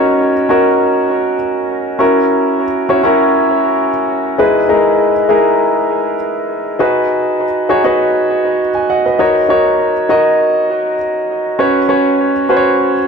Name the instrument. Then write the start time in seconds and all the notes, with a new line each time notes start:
grand piano
Already playing: C#4 D#4 F#4 A#4 C#5
0.49 C#4 D#4 F#4 A#4
1.99 C#4 E4 F#4 A#4
2.89 C#4 E4 F#4 C#5
3.03 C#4 E4 F#4 A#4
4.38 G#3 D#4 E4 G#4 B4
4.69 G#3 D#4 E4 G#4 A#4
5.29 G#3 D#4 E4 G#4 A#4
6.79 D#4 F#4 G#4 B4
7.69 D#4 F#4 G#4 C#5
7.84 D#4 F#4 G#4 B4
8.75 G#5
8.90 D#5 F#5
9.05 B4 D#5
9.19 D#4 F#4 A#4 C#5
9.49 D#4 F#4 A#4 C#5
10.09 D#4 F#4 A#4 D#5
11.59 C#4 F#4 B4 C#5
11.89 C#4 F#4 B4 C#5
12.49 C#4 F#4 B4 C5
12.57 C#5